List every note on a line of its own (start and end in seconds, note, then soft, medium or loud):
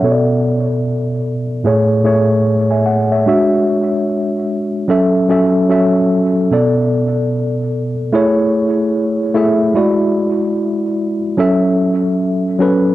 0.00 1.44 B2 medium
0.00 1.45 B3 medium
0.00 0.26 E5 medium
0.04 1.45 A4 medium
0.04 0.12 C#5 medium
0.12 1.49 D5 medium
1.64 2.00 A2 medium
1.64 2.01 A3 medium
1.64 2.01 G#4 medium
1.64 2.02 C#5 medium
2.04 2.41 A2 medium
2.04 2.41 A3 medium
2.04 2.41 G#4 medium
2.04 2.42 C#5 medium
2.71 2.86 E5 soft
2.71 2.86 G#5 medium
2.86 3.10 F#5 medium
3.12 3.50 C#5 medium
3.12 3.28 E5 medium
3.26 4.68 G#3 medium
3.26 4.69 D4 medium
3.26 4.69 F#4 medium
3.26 4.70 E5 medium
4.88 5.25 F#3 medium
4.88 5.25 C#4 medium
4.88 5.26 A4 medium
4.88 5.26 E5 medium
5.29 5.65 F#3 medium
5.29 5.66 C#4 medium
5.29 5.66 A4 medium
5.29 5.66 E5 medium
5.69 6.41 F#3 medium
5.69 6.42 C#4 medium
5.69 6.42 A4 medium
5.69 6.43 E5 medium
6.51 7.93 B2 medium
6.51 7.93 B3 medium
6.51 7.94 A4 medium
6.51 7.94 D5 medium
8.13 9.21 A3 medium
8.13 9.21 E4 medium
8.13 9.22 G#4 medium
8.13 9.22 C#5 medium
9.34 9.71 A3 medium
9.34 9.71 E4 medium
9.34 9.72 G#4 medium
9.34 9.72 E5 medium
9.74 11.17 G#3 medium
9.74 11.17 E4 medium
9.74 11.18 F#4 medium
9.74 11.18 D5 medium
11.37 12.45 F#3 medium
11.37 12.46 C#4 medium
11.37 12.46 A4 medium
11.37 12.47 E5 loud
12.59 12.95 F#3 medium
12.59 12.95 C#4 medium
12.59 12.95 A4 medium
12.59 12.95 B4 medium